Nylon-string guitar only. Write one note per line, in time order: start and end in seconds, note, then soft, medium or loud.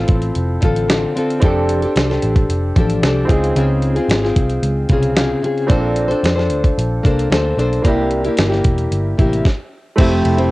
0.00 0.62 C4 soft
0.00 0.63 F4 soft
0.00 0.64 A4 medium
0.61 0.87 D3 medium
0.61 0.89 C4 medium
0.61 0.89 F4 medium
0.61 0.90 A4 medium
0.88 1.14 D3 medium
0.88 1.15 C4 medium
0.88 1.16 F4 medium
0.88 1.17 A4 medium
1.15 1.42 D3 medium
1.15 1.43 C4 medium
1.15 1.43 F4 medium
1.15 1.44 A4 medium
1.42 1.82 F3 medium
1.42 1.83 D4 medium
1.42 1.83 G4 medium
1.42 1.82 A4 medium
1.83 2.11 D4 soft
1.83 2.10 G4 soft
1.83 2.09 A4 medium
2.10 2.76 D4 soft
2.10 2.77 G4 soft
2.10 2.76 A4 medium
2.76 3.03 F3 medium
2.76 3.03 D4 medium
2.76 3.04 G4 medium
2.80 3.05 A4 medium
3.04 3.30 F3 medium
3.04 3.31 D4 medium
3.04 3.32 G4 medium
3.04 3.32 A4 medium
3.31 3.55 C#3 medium
3.31 3.56 C4 medium
3.31 3.57 F4 medium
3.31 3.57 G#4 medium
3.56 3.96 C#3 medium
3.56 3.97 C4 medium
3.56 3.96 F4 medium
3.56 3.95 G#4 medium
3.96 4.25 C4 soft
3.96 4.24 F4 soft
3.96 4.22 G#4 medium
4.23 4.91 C4 soft
4.23 4.92 F4 soft
4.23 4.90 G#4 soft
4.90 5.14 C#3 medium
4.90 5.16 C4 medium
4.90 5.16 F4 medium
4.90 5.17 G#4 medium
5.15 5.41 C#3 medium
5.15 5.43 C4 medium
5.15 5.43 F4 medium
5.15 5.44 G#4 medium
5.43 5.70 C#3 medium
5.43 5.68 C4 medium
5.43 5.69 F4 medium
5.43 5.70 G#4 medium
5.68 6.09 A#3 medium
5.68 6.10 D4 medium
5.68 6.09 A4 medium
5.68 6.07 C5 medium
6.08 6.38 D4 soft
6.08 6.37 A4 medium
6.08 6.34 C5 medium
6.36 7.03 D4 soft
6.36 7.05 A4 medium
6.36 7.06 C5 medium
7.03 7.29 A#3 medium
7.03 7.30 D4 medium
7.03 7.30 A4 medium
7.03 7.32 C5 medium
7.30 7.56 A#3 medium
7.30 7.57 D4 medium
7.30 7.58 A4 medium
7.30 7.59 C5 medium
7.57 7.83 A#3 medium
7.57 7.85 D4 medium
7.57 7.85 A4 medium
7.57 7.86 C5 medium
7.84 8.24 C3 medium
7.84 8.25 A#3 medium
7.84 8.25 E4 medium
7.84 8.23 G4 medium
8.24 8.53 A#3 soft
8.24 8.51 E4 soft
8.24 8.49 G4 medium
8.50 9.17 A#3 soft
8.50 9.18 E4 soft
8.50 9.18 G4 medium
9.17 9.45 C3 medium
9.17 9.45 A#3 medium
9.17 9.45 E4 medium
9.17 9.46 G4 medium
9.97 10.38 F3 medium
9.97 10.39 A3 medium
9.97 10.38 C4 loud
9.97 10.36 E4 loud
10.37 10.51 A3 medium
10.37 10.51 C4 medium
10.37 10.51 E4 medium